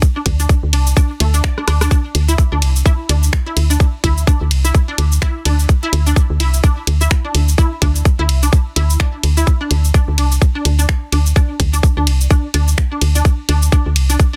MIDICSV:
0, 0, Header, 1, 4, 480
1, 0, Start_track
1, 0, Tempo, 472441
1, 22, Time_signature, 4, 2, 24, 8
1, 14592, End_track
2, 0, Start_track
2, 0, Title_t, "Synth arpeggio sound"
2, 0, Program_c, 0, 84
2, 163, Note_on_c, 0, 62, 79
2, 198, Note_off_c, 0, 62, 0
2, 403, Note_on_c, 0, 62, 78
2, 455, Note_off_c, 0, 62, 0
2, 742, Note_on_c, 0, 62, 80
2, 791, Note_off_c, 0, 62, 0
2, 982, Note_on_c, 0, 62, 79
2, 1056, Note_off_c, 0, 62, 0
2, 1221, Note_on_c, 0, 57, 78
2, 1251, Note_off_c, 0, 57, 0
2, 1362, Note_on_c, 0, 62, 74
2, 1397, Note_off_c, 0, 62, 0
2, 1461, Note_on_c, 0, 74, 82
2, 1491, Note_off_c, 0, 74, 0
2, 1602, Note_on_c, 0, 62, 80
2, 1655, Note_off_c, 0, 62, 0
2, 1702, Note_on_c, 0, 62, 102
2, 1732, Note_off_c, 0, 62, 0
2, 1842, Note_on_c, 0, 62, 108
2, 1877, Note_off_c, 0, 62, 0
2, 1941, Note_on_c, 0, 62, 84
2, 2015, Note_off_c, 0, 62, 0
2, 2321, Note_on_c, 0, 64, 109
2, 2357, Note_off_c, 0, 64, 0
2, 2560, Note_on_c, 0, 62, 78
2, 2614, Note_off_c, 0, 62, 0
2, 2900, Note_on_c, 0, 64, 102
2, 2950, Note_off_c, 0, 64, 0
2, 3140, Note_on_c, 0, 62, 79
2, 3215, Note_off_c, 0, 62, 0
2, 3519, Note_on_c, 0, 64, 99
2, 3556, Note_off_c, 0, 64, 0
2, 3760, Note_on_c, 0, 62, 79
2, 3814, Note_off_c, 0, 62, 0
2, 4101, Note_on_c, 0, 64, 104
2, 4151, Note_off_c, 0, 64, 0
2, 4342, Note_on_c, 0, 62, 79
2, 4415, Note_off_c, 0, 62, 0
2, 4720, Note_on_c, 0, 64, 101
2, 4756, Note_off_c, 0, 64, 0
2, 4961, Note_on_c, 0, 62, 78
2, 5014, Note_off_c, 0, 62, 0
2, 5301, Note_on_c, 0, 64, 110
2, 5351, Note_off_c, 0, 64, 0
2, 5542, Note_on_c, 0, 62, 75
2, 5616, Note_off_c, 0, 62, 0
2, 5921, Note_on_c, 0, 64, 102
2, 5957, Note_off_c, 0, 64, 0
2, 6162, Note_on_c, 0, 62, 80
2, 6215, Note_off_c, 0, 62, 0
2, 6501, Note_on_c, 0, 64, 105
2, 6551, Note_off_c, 0, 64, 0
2, 6743, Note_on_c, 0, 62, 85
2, 6816, Note_off_c, 0, 62, 0
2, 7122, Note_on_c, 0, 64, 100
2, 7157, Note_off_c, 0, 64, 0
2, 7361, Note_on_c, 0, 62, 79
2, 7415, Note_off_c, 0, 62, 0
2, 7702, Note_on_c, 0, 64, 108
2, 7751, Note_off_c, 0, 64, 0
2, 7943, Note_on_c, 0, 62, 78
2, 8016, Note_off_c, 0, 62, 0
2, 8322, Note_on_c, 0, 64, 102
2, 8357, Note_off_c, 0, 64, 0
2, 8562, Note_on_c, 0, 62, 78
2, 8615, Note_off_c, 0, 62, 0
2, 8902, Note_on_c, 0, 64, 101
2, 8951, Note_off_c, 0, 64, 0
2, 9141, Note_on_c, 0, 62, 85
2, 9215, Note_off_c, 0, 62, 0
2, 9521, Note_on_c, 0, 64, 106
2, 9557, Note_off_c, 0, 64, 0
2, 9761, Note_on_c, 0, 62, 79
2, 9814, Note_off_c, 0, 62, 0
2, 10101, Note_on_c, 0, 62, 81
2, 10175, Note_off_c, 0, 62, 0
2, 10343, Note_on_c, 0, 62, 77
2, 10416, Note_off_c, 0, 62, 0
2, 10721, Note_on_c, 0, 62, 81
2, 10774, Note_off_c, 0, 62, 0
2, 10960, Note_on_c, 0, 62, 79
2, 11014, Note_off_c, 0, 62, 0
2, 11300, Note_on_c, 0, 62, 73
2, 11375, Note_off_c, 0, 62, 0
2, 11540, Note_on_c, 0, 62, 90
2, 11615, Note_off_c, 0, 62, 0
2, 11920, Note_on_c, 0, 62, 82
2, 11974, Note_off_c, 0, 62, 0
2, 12161, Note_on_c, 0, 62, 82
2, 12215, Note_off_c, 0, 62, 0
2, 12502, Note_on_c, 0, 62, 82
2, 12575, Note_off_c, 0, 62, 0
2, 12742, Note_on_c, 0, 62, 72
2, 12816, Note_off_c, 0, 62, 0
2, 13122, Note_on_c, 0, 62, 77
2, 13175, Note_off_c, 0, 62, 0
2, 13364, Note_on_c, 0, 62, 80
2, 13416, Note_off_c, 0, 62, 0
2, 13704, Note_on_c, 0, 62, 78
2, 13777, Note_off_c, 0, 62, 0
2, 13943, Note_on_c, 0, 62, 76
2, 14016, Note_off_c, 0, 62, 0
2, 14321, Note_on_c, 0, 62, 80
2, 14374, Note_off_c, 0, 62, 0
2, 14592, End_track
3, 0, Start_track
3, 0, Title_t, "FM bass"
3, 0, Program_c, 1, 39
3, 262, Note_on_c, 1, 38, 100
3, 472, Note_off_c, 1, 38, 0
3, 642, Note_on_c, 1, 38, 94
3, 743, Note_on_c, 1, 36, 105
3, 758, Note_off_c, 1, 38, 0
3, 952, Note_off_c, 1, 36, 0
3, 1223, Note_on_c, 1, 38, 106
3, 1432, Note_off_c, 1, 38, 0
3, 1703, Note_on_c, 1, 38, 90
3, 1912, Note_off_c, 1, 38, 0
3, 2182, Note_on_c, 1, 38, 105
3, 2392, Note_off_c, 1, 38, 0
3, 2562, Note_on_c, 1, 38, 101
3, 2662, Note_on_c, 1, 36, 101
3, 2677, Note_off_c, 1, 38, 0
3, 2872, Note_off_c, 1, 36, 0
3, 3142, Note_on_c, 1, 38, 102
3, 3352, Note_off_c, 1, 38, 0
3, 3622, Note_on_c, 1, 38, 94
3, 3832, Note_off_c, 1, 38, 0
3, 4102, Note_on_c, 1, 38, 103
3, 4312, Note_off_c, 1, 38, 0
3, 4481, Note_on_c, 1, 38, 100
3, 4582, Note_on_c, 1, 36, 100
3, 4597, Note_off_c, 1, 38, 0
3, 4791, Note_off_c, 1, 36, 0
3, 5061, Note_on_c, 1, 38, 99
3, 5271, Note_off_c, 1, 38, 0
3, 5541, Note_on_c, 1, 38, 93
3, 5751, Note_off_c, 1, 38, 0
3, 6020, Note_on_c, 1, 38, 106
3, 6231, Note_off_c, 1, 38, 0
3, 6401, Note_on_c, 1, 38, 103
3, 6501, Note_on_c, 1, 36, 105
3, 6516, Note_off_c, 1, 38, 0
3, 6711, Note_off_c, 1, 36, 0
3, 6982, Note_on_c, 1, 38, 97
3, 7192, Note_off_c, 1, 38, 0
3, 7463, Note_on_c, 1, 38, 99
3, 7672, Note_off_c, 1, 38, 0
3, 7943, Note_on_c, 1, 38, 106
3, 8152, Note_off_c, 1, 38, 0
3, 8322, Note_on_c, 1, 38, 98
3, 8422, Note_on_c, 1, 36, 102
3, 8438, Note_off_c, 1, 38, 0
3, 8632, Note_off_c, 1, 36, 0
3, 8903, Note_on_c, 1, 38, 103
3, 9112, Note_off_c, 1, 38, 0
3, 9382, Note_on_c, 1, 38, 90
3, 9592, Note_off_c, 1, 38, 0
3, 9862, Note_on_c, 1, 38, 106
3, 10072, Note_off_c, 1, 38, 0
3, 10242, Note_on_c, 1, 38, 100
3, 10342, Note_on_c, 1, 36, 101
3, 10357, Note_off_c, 1, 38, 0
3, 10551, Note_off_c, 1, 36, 0
3, 10822, Note_on_c, 1, 38, 105
3, 11032, Note_off_c, 1, 38, 0
3, 11302, Note_on_c, 1, 38, 95
3, 11512, Note_off_c, 1, 38, 0
3, 11782, Note_on_c, 1, 38, 103
3, 11992, Note_off_c, 1, 38, 0
3, 12162, Note_on_c, 1, 38, 99
3, 12262, Note_on_c, 1, 36, 103
3, 12277, Note_off_c, 1, 38, 0
3, 12472, Note_off_c, 1, 36, 0
3, 12742, Note_on_c, 1, 38, 98
3, 12952, Note_off_c, 1, 38, 0
3, 13223, Note_on_c, 1, 38, 100
3, 13432, Note_off_c, 1, 38, 0
3, 13704, Note_on_c, 1, 38, 106
3, 13913, Note_off_c, 1, 38, 0
3, 14083, Note_on_c, 1, 38, 98
3, 14184, Note_on_c, 1, 36, 97
3, 14200, Note_off_c, 1, 38, 0
3, 14393, Note_off_c, 1, 36, 0
3, 14592, End_track
4, 0, Start_track
4, 0, Title_t, "Drums"
4, 21, Note_on_c, 9, 69, 46
4, 22, Note_on_c, 9, 36, 125
4, 123, Note_off_c, 9, 69, 0
4, 124, Note_off_c, 9, 36, 0
4, 261, Note_on_c, 9, 42, 88
4, 261, Note_on_c, 9, 51, 90
4, 262, Note_on_c, 9, 36, 60
4, 363, Note_off_c, 9, 36, 0
4, 363, Note_off_c, 9, 42, 0
4, 363, Note_off_c, 9, 51, 0
4, 402, Note_on_c, 9, 69, 54
4, 502, Note_on_c, 9, 36, 118
4, 503, Note_off_c, 9, 69, 0
4, 503, Note_on_c, 9, 69, 46
4, 603, Note_off_c, 9, 36, 0
4, 604, Note_off_c, 9, 69, 0
4, 742, Note_on_c, 9, 42, 90
4, 742, Note_on_c, 9, 51, 90
4, 843, Note_off_c, 9, 42, 0
4, 843, Note_off_c, 9, 51, 0
4, 882, Note_on_c, 9, 69, 54
4, 982, Note_off_c, 9, 69, 0
4, 982, Note_on_c, 9, 36, 118
4, 982, Note_on_c, 9, 69, 45
4, 1083, Note_off_c, 9, 36, 0
4, 1083, Note_off_c, 9, 69, 0
4, 1222, Note_on_c, 9, 42, 92
4, 1222, Note_on_c, 9, 51, 94
4, 1324, Note_off_c, 9, 42, 0
4, 1324, Note_off_c, 9, 51, 0
4, 1361, Note_on_c, 9, 69, 57
4, 1462, Note_off_c, 9, 69, 0
4, 1462, Note_on_c, 9, 26, 105
4, 1462, Note_on_c, 9, 36, 112
4, 1462, Note_on_c, 9, 69, 43
4, 1563, Note_off_c, 9, 36, 0
4, 1564, Note_off_c, 9, 26, 0
4, 1564, Note_off_c, 9, 69, 0
4, 1602, Note_on_c, 9, 37, 51
4, 1703, Note_off_c, 9, 37, 0
4, 1703, Note_on_c, 9, 37, 78
4, 1703, Note_on_c, 9, 42, 96
4, 1703, Note_on_c, 9, 51, 89
4, 1804, Note_off_c, 9, 37, 0
4, 1804, Note_off_c, 9, 42, 0
4, 1804, Note_off_c, 9, 51, 0
4, 1842, Note_on_c, 9, 37, 76
4, 1842, Note_on_c, 9, 69, 54
4, 1941, Note_on_c, 9, 36, 121
4, 1942, Note_off_c, 9, 69, 0
4, 1942, Note_on_c, 9, 69, 44
4, 1943, Note_off_c, 9, 37, 0
4, 2043, Note_off_c, 9, 36, 0
4, 2044, Note_off_c, 9, 69, 0
4, 2183, Note_on_c, 9, 42, 98
4, 2183, Note_on_c, 9, 51, 85
4, 2284, Note_off_c, 9, 42, 0
4, 2284, Note_off_c, 9, 51, 0
4, 2322, Note_on_c, 9, 69, 57
4, 2421, Note_on_c, 9, 36, 122
4, 2423, Note_off_c, 9, 69, 0
4, 2423, Note_on_c, 9, 69, 44
4, 2523, Note_off_c, 9, 36, 0
4, 2525, Note_off_c, 9, 69, 0
4, 2663, Note_on_c, 9, 42, 94
4, 2663, Note_on_c, 9, 51, 88
4, 2764, Note_off_c, 9, 42, 0
4, 2764, Note_off_c, 9, 51, 0
4, 2803, Note_on_c, 9, 69, 55
4, 2902, Note_on_c, 9, 36, 120
4, 2904, Note_off_c, 9, 69, 0
4, 2904, Note_on_c, 9, 69, 47
4, 3003, Note_off_c, 9, 36, 0
4, 3006, Note_off_c, 9, 69, 0
4, 3143, Note_on_c, 9, 42, 97
4, 3143, Note_on_c, 9, 51, 84
4, 3245, Note_off_c, 9, 42, 0
4, 3245, Note_off_c, 9, 51, 0
4, 3283, Note_on_c, 9, 69, 54
4, 3382, Note_on_c, 9, 36, 119
4, 3383, Note_off_c, 9, 69, 0
4, 3383, Note_on_c, 9, 26, 106
4, 3383, Note_on_c, 9, 69, 43
4, 3483, Note_off_c, 9, 36, 0
4, 3485, Note_off_c, 9, 26, 0
4, 3485, Note_off_c, 9, 69, 0
4, 3623, Note_on_c, 9, 42, 95
4, 3623, Note_on_c, 9, 51, 91
4, 3725, Note_off_c, 9, 42, 0
4, 3725, Note_off_c, 9, 51, 0
4, 3763, Note_on_c, 9, 69, 53
4, 3862, Note_on_c, 9, 36, 127
4, 3863, Note_off_c, 9, 69, 0
4, 3863, Note_on_c, 9, 69, 42
4, 3963, Note_off_c, 9, 36, 0
4, 3964, Note_off_c, 9, 69, 0
4, 4102, Note_on_c, 9, 36, 67
4, 4103, Note_on_c, 9, 42, 95
4, 4103, Note_on_c, 9, 51, 83
4, 4203, Note_off_c, 9, 36, 0
4, 4204, Note_off_c, 9, 42, 0
4, 4204, Note_off_c, 9, 51, 0
4, 4243, Note_on_c, 9, 69, 52
4, 4342, Note_on_c, 9, 36, 123
4, 4343, Note_off_c, 9, 69, 0
4, 4343, Note_on_c, 9, 69, 43
4, 4443, Note_off_c, 9, 36, 0
4, 4445, Note_off_c, 9, 69, 0
4, 4582, Note_on_c, 9, 42, 100
4, 4582, Note_on_c, 9, 51, 84
4, 4684, Note_off_c, 9, 42, 0
4, 4684, Note_off_c, 9, 51, 0
4, 4721, Note_on_c, 9, 69, 52
4, 4822, Note_off_c, 9, 69, 0
4, 4822, Note_on_c, 9, 36, 124
4, 4822, Note_on_c, 9, 69, 44
4, 4923, Note_off_c, 9, 36, 0
4, 4924, Note_off_c, 9, 69, 0
4, 5062, Note_on_c, 9, 42, 97
4, 5062, Note_on_c, 9, 51, 82
4, 5164, Note_off_c, 9, 42, 0
4, 5164, Note_off_c, 9, 51, 0
4, 5202, Note_on_c, 9, 69, 54
4, 5302, Note_on_c, 9, 36, 125
4, 5303, Note_on_c, 9, 26, 109
4, 5304, Note_off_c, 9, 69, 0
4, 5403, Note_off_c, 9, 36, 0
4, 5404, Note_off_c, 9, 26, 0
4, 5541, Note_on_c, 9, 42, 98
4, 5541, Note_on_c, 9, 51, 85
4, 5643, Note_off_c, 9, 42, 0
4, 5643, Note_off_c, 9, 51, 0
4, 5682, Note_on_c, 9, 69, 51
4, 5782, Note_off_c, 9, 69, 0
4, 5782, Note_on_c, 9, 36, 127
4, 5782, Note_on_c, 9, 69, 42
4, 5883, Note_off_c, 9, 36, 0
4, 5884, Note_off_c, 9, 69, 0
4, 6024, Note_on_c, 9, 42, 96
4, 6024, Note_on_c, 9, 51, 83
4, 6125, Note_off_c, 9, 42, 0
4, 6125, Note_off_c, 9, 51, 0
4, 6162, Note_on_c, 9, 69, 52
4, 6262, Note_on_c, 9, 36, 127
4, 6264, Note_off_c, 9, 69, 0
4, 6264, Note_on_c, 9, 69, 42
4, 6364, Note_off_c, 9, 36, 0
4, 6366, Note_off_c, 9, 69, 0
4, 6503, Note_on_c, 9, 42, 103
4, 6503, Note_on_c, 9, 51, 86
4, 6605, Note_off_c, 9, 42, 0
4, 6605, Note_off_c, 9, 51, 0
4, 6642, Note_on_c, 9, 69, 51
4, 6742, Note_off_c, 9, 69, 0
4, 6742, Note_on_c, 9, 36, 127
4, 6742, Note_on_c, 9, 69, 43
4, 6844, Note_off_c, 9, 36, 0
4, 6844, Note_off_c, 9, 69, 0
4, 6983, Note_on_c, 9, 42, 101
4, 6983, Note_on_c, 9, 51, 83
4, 7084, Note_off_c, 9, 42, 0
4, 7084, Note_off_c, 9, 51, 0
4, 7122, Note_on_c, 9, 69, 49
4, 7223, Note_off_c, 9, 69, 0
4, 7223, Note_on_c, 9, 26, 108
4, 7223, Note_on_c, 9, 36, 124
4, 7223, Note_on_c, 9, 69, 42
4, 7324, Note_off_c, 9, 26, 0
4, 7324, Note_off_c, 9, 36, 0
4, 7324, Note_off_c, 9, 69, 0
4, 7463, Note_on_c, 9, 42, 99
4, 7463, Note_on_c, 9, 51, 84
4, 7565, Note_off_c, 9, 42, 0
4, 7565, Note_off_c, 9, 51, 0
4, 7603, Note_on_c, 9, 69, 51
4, 7703, Note_off_c, 9, 69, 0
4, 7703, Note_on_c, 9, 36, 123
4, 7703, Note_on_c, 9, 69, 42
4, 7805, Note_off_c, 9, 36, 0
4, 7805, Note_off_c, 9, 69, 0
4, 7943, Note_on_c, 9, 36, 69
4, 7943, Note_on_c, 9, 42, 102
4, 7943, Note_on_c, 9, 51, 82
4, 8044, Note_off_c, 9, 36, 0
4, 8045, Note_off_c, 9, 42, 0
4, 8045, Note_off_c, 9, 51, 0
4, 8083, Note_on_c, 9, 69, 52
4, 8183, Note_off_c, 9, 69, 0
4, 8183, Note_on_c, 9, 36, 125
4, 8183, Note_on_c, 9, 69, 41
4, 8284, Note_off_c, 9, 36, 0
4, 8285, Note_off_c, 9, 69, 0
4, 8422, Note_on_c, 9, 42, 99
4, 8422, Note_on_c, 9, 51, 82
4, 8524, Note_off_c, 9, 42, 0
4, 8524, Note_off_c, 9, 51, 0
4, 8563, Note_on_c, 9, 69, 51
4, 8663, Note_off_c, 9, 69, 0
4, 8663, Note_on_c, 9, 36, 127
4, 8663, Note_on_c, 9, 69, 40
4, 8764, Note_off_c, 9, 36, 0
4, 8765, Note_off_c, 9, 69, 0
4, 8903, Note_on_c, 9, 42, 93
4, 8903, Note_on_c, 9, 51, 83
4, 9005, Note_off_c, 9, 42, 0
4, 9005, Note_off_c, 9, 51, 0
4, 9043, Note_on_c, 9, 69, 52
4, 9143, Note_on_c, 9, 26, 108
4, 9143, Note_on_c, 9, 36, 125
4, 9144, Note_off_c, 9, 69, 0
4, 9244, Note_off_c, 9, 36, 0
4, 9245, Note_off_c, 9, 26, 0
4, 9382, Note_on_c, 9, 42, 95
4, 9382, Note_on_c, 9, 51, 85
4, 9484, Note_off_c, 9, 42, 0
4, 9484, Note_off_c, 9, 51, 0
4, 9522, Note_on_c, 9, 69, 49
4, 9622, Note_off_c, 9, 69, 0
4, 9622, Note_on_c, 9, 36, 119
4, 9622, Note_on_c, 9, 69, 40
4, 9724, Note_off_c, 9, 36, 0
4, 9724, Note_off_c, 9, 69, 0
4, 9862, Note_on_c, 9, 42, 95
4, 9862, Note_on_c, 9, 51, 86
4, 9964, Note_off_c, 9, 42, 0
4, 9964, Note_off_c, 9, 51, 0
4, 10002, Note_on_c, 9, 69, 52
4, 10102, Note_on_c, 9, 36, 127
4, 10103, Note_off_c, 9, 69, 0
4, 10103, Note_on_c, 9, 69, 42
4, 10204, Note_off_c, 9, 36, 0
4, 10204, Note_off_c, 9, 69, 0
4, 10342, Note_on_c, 9, 42, 99
4, 10342, Note_on_c, 9, 51, 88
4, 10444, Note_off_c, 9, 42, 0
4, 10444, Note_off_c, 9, 51, 0
4, 10482, Note_on_c, 9, 69, 48
4, 10582, Note_on_c, 9, 36, 122
4, 10583, Note_off_c, 9, 69, 0
4, 10583, Note_on_c, 9, 69, 43
4, 10684, Note_off_c, 9, 36, 0
4, 10685, Note_off_c, 9, 69, 0
4, 10822, Note_on_c, 9, 42, 100
4, 10822, Note_on_c, 9, 51, 88
4, 10924, Note_off_c, 9, 42, 0
4, 10924, Note_off_c, 9, 51, 0
4, 10963, Note_on_c, 9, 69, 49
4, 11062, Note_on_c, 9, 36, 122
4, 11063, Note_on_c, 9, 26, 98
4, 11065, Note_off_c, 9, 69, 0
4, 11164, Note_off_c, 9, 26, 0
4, 11164, Note_off_c, 9, 36, 0
4, 11303, Note_on_c, 9, 42, 91
4, 11303, Note_on_c, 9, 51, 83
4, 11404, Note_off_c, 9, 42, 0
4, 11404, Note_off_c, 9, 51, 0
4, 11442, Note_on_c, 9, 69, 51
4, 11542, Note_on_c, 9, 36, 126
4, 11543, Note_off_c, 9, 69, 0
4, 11543, Note_on_c, 9, 69, 42
4, 11644, Note_off_c, 9, 36, 0
4, 11644, Note_off_c, 9, 69, 0
4, 11782, Note_on_c, 9, 36, 59
4, 11782, Note_on_c, 9, 42, 94
4, 11782, Note_on_c, 9, 51, 88
4, 11884, Note_off_c, 9, 36, 0
4, 11884, Note_off_c, 9, 42, 0
4, 11884, Note_off_c, 9, 51, 0
4, 11923, Note_on_c, 9, 69, 54
4, 12022, Note_on_c, 9, 36, 118
4, 12024, Note_off_c, 9, 69, 0
4, 12024, Note_on_c, 9, 69, 41
4, 12124, Note_off_c, 9, 36, 0
4, 12126, Note_off_c, 9, 69, 0
4, 12263, Note_on_c, 9, 42, 91
4, 12263, Note_on_c, 9, 51, 92
4, 12365, Note_off_c, 9, 42, 0
4, 12365, Note_off_c, 9, 51, 0
4, 12404, Note_on_c, 9, 69, 53
4, 12502, Note_on_c, 9, 36, 125
4, 12503, Note_off_c, 9, 69, 0
4, 12503, Note_on_c, 9, 69, 42
4, 12604, Note_off_c, 9, 36, 0
4, 12604, Note_off_c, 9, 69, 0
4, 12741, Note_on_c, 9, 42, 93
4, 12741, Note_on_c, 9, 51, 93
4, 12843, Note_off_c, 9, 42, 0
4, 12843, Note_off_c, 9, 51, 0
4, 12882, Note_on_c, 9, 69, 51
4, 12982, Note_on_c, 9, 36, 110
4, 12983, Note_off_c, 9, 69, 0
4, 12983, Note_on_c, 9, 26, 96
4, 12983, Note_on_c, 9, 69, 39
4, 13084, Note_off_c, 9, 36, 0
4, 13085, Note_off_c, 9, 26, 0
4, 13085, Note_off_c, 9, 69, 0
4, 13223, Note_on_c, 9, 42, 91
4, 13223, Note_on_c, 9, 51, 95
4, 13324, Note_off_c, 9, 42, 0
4, 13324, Note_off_c, 9, 51, 0
4, 13363, Note_on_c, 9, 69, 52
4, 13462, Note_on_c, 9, 36, 117
4, 13463, Note_off_c, 9, 69, 0
4, 13463, Note_on_c, 9, 69, 44
4, 13564, Note_off_c, 9, 36, 0
4, 13565, Note_off_c, 9, 69, 0
4, 13703, Note_on_c, 9, 42, 90
4, 13703, Note_on_c, 9, 51, 93
4, 13805, Note_off_c, 9, 42, 0
4, 13805, Note_off_c, 9, 51, 0
4, 13842, Note_on_c, 9, 69, 54
4, 13942, Note_off_c, 9, 69, 0
4, 13942, Note_on_c, 9, 69, 47
4, 13943, Note_on_c, 9, 36, 116
4, 14044, Note_off_c, 9, 36, 0
4, 14044, Note_off_c, 9, 69, 0
4, 14182, Note_on_c, 9, 42, 90
4, 14182, Note_on_c, 9, 51, 92
4, 14284, Note_off_c, 9, 42, 0
4, 14284, Note_off_c, 9, 51, 0
4, 14322, Note_on_c, 9, 69, 55
4, 14423, Note_off_c, 9, 69, 0
4, 14423, Note_on_c, 9, 36, 116
4, 14423, Note_on_c, 9, 69, 44
4, 14524, Note_off_c, 9, 36, 0
4, 14524, Note_off_c, 9, 69, 0
4, 14592, End_track
0, 0, End_of_file